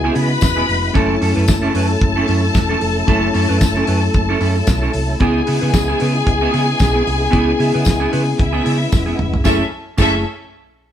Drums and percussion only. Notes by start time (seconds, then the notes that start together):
0.15 open hi-hat
0.41 kick, snare, closed hi-hat, tambourine
0.69 open hi-hat
0.95 kick, closed hi-hat
1.22 open hi-hat
1.48 kick, snare, closed hi-hat, tambourine
1.75 open hi-hat
2.01 kick, closed hi-hat
2.28 open hi-hat
2.55 kick, snare, closed hi-hat, tambourine
2.81 open hi-hat
3.08 kick, closed hi-hat
3.34 open hi-hat
3.61 kick, snare, closed hi-hat, tambourine
3.87 open hi-hat
4.14 kick, closed hi-hat
4.41 open hi-hat
4.67 kick, snare, closed hi-hat, tambourine
4.93 open hi-hat
5.20 kick, closed hi-hat
5.47 open hi-hat
5.74 kick, snare, closed hi-hat, tambourine
6.00 open hi-hat
6.27 kick, closed hi-hat
6.54 open hi-hat
6.79 kick, snare, closed hi-hat, tambourine
7.07 open hi-hat
7.33 kick, closed hi-hat
7.60 open hi-hat
7.85 kick, snare, closed hi-hat, tambourine
8.13 open hi-hat
8.40 kick, closed hi-hat
8.66 open hi-hat
8.92 kick, snare, tambourine
9.19 mid tom
9.34 floor tom
9.45 kick, snare, tambourine
9.98 kick, crash, tambourine